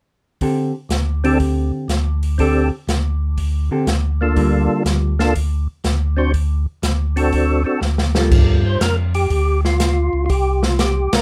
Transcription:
0.41 0.71 D3 soft
0.41 0.71 C4 medium
0.41 0.71 G4 medium
0.41 0.72 A4 medium
0.41 kick soft
0.41 open hi-hat soft
0.89 1.72 D2 medium
0.89 snare medium
0.89 closed hi-hat soft
1.24 1.86 D3 medium
1.24 1.38 C4 medium
1.24 1.86 C4 medium
1.24 1.38 D4 medium
1.24 1.39 G4 medium
1.24 1.86 G4 medium
1.24 1.87 A4 medium
1.24 1.39 A4 medium
1.24 open hi-hat soft
1.40 kick soft
1.40 open hi-hat soft
1.88 2.71 D2 medium
1.88 snare soft
1.88 closed hi-hat soft
2.23 open hi-hat soft
2.38 2.69 D3 medium
2.38 2.68 C4 medium
2.38 2.69 C4 medium
2.38 2.69 D4 soft
2.38 2.69 G4 medium
2.38 2.69 G4 soft
2.38 2.69 A4 medium
2.38 kick soft
2.38 open hi-hat soft
2.88 3.70 D2 medium
2.88 snare medium
2.88 closed hi-hat soft
3.38 kick soft
3.38 open hi-hat soft
3.71 3.85 D3 soft
3.71 3.86 C4 soft
3.71 3.86 G4 medium
3.71 3.86 A4 medium
3.86 4.68 D2 medium
3.86 snare medium
3.86 closed hi-hat soft
4.21 4.83 A#3 medium
4.21 4.83 D4 soft
4.21 4.83 F4 soft
4.21 4.84 A4 soft
4.36 5.12 D3 medium
4.36 5.13 G3 medium
4.36 5.13 A#3 medium
4.36 5.13 F4 medium
4.36 kick soft
4.36 open hi-hat soft
4.85 5.67 D2 medium
4.85 snare medium
4.85 closed hi-hat soft
5.19 5.33 A#3 medium
5.19 5.34 D4 medium
5.19 5.34 F4 medium
5.19 5.34 A4 medium
5.19 snare soft
5.35 kick soft
5.35 open hi-hat soft
5.84 6.66 D2 medium
5.84 snare medium
5.84 closed hi-hat soft
6.17 6.32 C4 medium
6.17 6.32 D4 medium
6.17 6.32 F#4 medium
6.17 6.33 C5 medium
6.34 kick soft
6.34 open hi-hat soft
6.82 7.65 D2 medium
6.82 snare medium
6.82 closed hi-hat soft
7.16 7.62 C4 medium
7.16 7.63 D4 medium
7.16 7.63 F#4 medium
7.16 7.64 A4 medium
7.16 open hi-hat soft
7.32 kick soft
7.32 open hi-hat soft
7.64 7.80 C4 soft
7.64 7.80 D4 soft
7.64 7.80 F#4 soft
7.64 7.81 A4 medium
7.81 8.64 D2 medium
7.81 snare soft
7.98 snare soft
8.15 8.78 G3 medium
8.15 8.78 A#3 medium
8.15 8.78 F4 medium
8.15 8.78 A4 medium
8.15 snare medium
8.31 8.77 G2 medium
8.31 kick medium
8.31 crash medium
8.66 8.82 C5 medium
8.81 9.27 F2 medium
8.81 8.96 A#4 medium
8.81 snare medium
8.81 closed hi-hat soft
9.14 9.61 G4 medium
9.14 open hi-hat soft
9.30 10.09 D2 medium
9.30 kick soft
9.30 open hi-hat soft
9.65 10.25 F4 medium
9.65 snare soft
9.80 snare medium
9.80 closed hi-hat soft
10.13 10.28 C#2 medium
10.26 11.08 C2 medium
10.26 10.30 F4 medium
10.26 10.64 G4 medium
10.26 kick soft
10.26 open hi-hat soft
10.63 10.80 F4 medium
10.63 snare medium
10.79 11.14 G4 medium
10.79 snare medium
10.79 closed hi-hat soft
11.13 11.21 C2 soft
11.13 11.22 A#4 medium
11.13 snare medium
11.13 ride medium

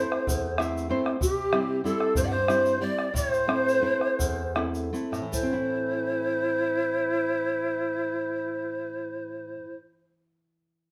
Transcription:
0.00 0.46 A3 medium
0.00 0.46 C4 soft
0.00 0.46 E4 medium
0.00 0.60 C5 loud
0.00 0.60 C5 medium
0.12 bombo rim medium
0.27 0.88 E2 medium
0.27 bombo low medium
0.27 shaker medium
0.58 0.88 A3 medium
0.58 0.89 C4 medium
0.58 0.89 E4 medium
0.58 0.88 E5 medium
0.58 bombo rim medium
0.58 shaker soft
0.77 shaker soft
0.89 1.15 A3 medium
0.89 1.15 C4 soft
0.89 1.15 E4 medium
0.89 1.19 C5 medium
1.06 bombo rim medium
1.21 1.82 C3 medium
1.21 1.81 G4 medium
1.21 bombo low medium
1.21 shaker medium
1.53 1.83 G3 soft
1.53 1.83 C4 soft
1.53 1.84 E4 medium
1.53 bombo rim medium
1.84 2.36 G3 medium
1.84 2.36 C4 soft
1.84 2.37 E4 medium
1.84 2.20 A4 medium
1.84 2.18 A4 medium
1.84 bombo rim soft
1.84 shaker soft
2.00 bombo rim medium
2.15 2.80 G2 medium
2.15 2.24 C5 loud
2.15 2.27 C5 medium
2.15 bombo low medium
2.15 shaker medium
2.23 2.32 D5 medium
2.23 2.34 F#5 medium
2.31 2.83 C5 loud
2.31 2.85 C5 medium
2.48 2.80 G3 medium
2.48 2.80 C4 medium
2.48 2.80 E4 medium
2.48 bombo rim medium
2.48 shaker soft
2.66 shaker soft
2.81 3.08 G3 soft
2.81 3.08 C4 soft
2.81 3.08 E4 medium
2.81 3.14 D5 loud
2.81 3.15 D5 medium
2.99 bombo rim medium
3.14 3.81 A2 medium
3.14 3.32 C#5 loud
3.14 3.33 C#5 loud
3.14 bombo low medium
3.14 shaker medium
3.32 4.52 C5 loud
3.32 4.53 C5 loud
3.32 bombo rim soft
3.32 shaker soft
3.47 3.80 A3 soft
3.47 3.81 C4 medium
3.47 3.81 E4 medium
3.47 bombo rim medium
3.69 shaker soft
3.81 4.40 A3 medium
3.81 4.41 C4 soft
3.81 4.41 E4 medium
4.01 bombo rim medium
4.19 4.91 E2 medium
4.19 bombo low medium
4.19 shaker medium
4.55 4.92 A3 medium
4.55 4.91 C4 medium
4.55 4.92 E4 medium
4.55 bombo rim medium
4.75 shaker soft
4.93 5.24 A3 medium
4.93 5.24 C4 soft
4.93 5.25 E4 medium
4.93 shaker soft
5.12 9.55 A2 medium
5.12 bombo rim medium
5.12 shaker soft
5.22 9.65 E3 soft
5.32 9.76 A3 medium
5.32 9.76 E4 medium
5.32 9.75 C5 loud
5.32 bombo low medium
5.32 shaker medium
5.43 9.86 C4 medium
5.53 9.96 E4 medium

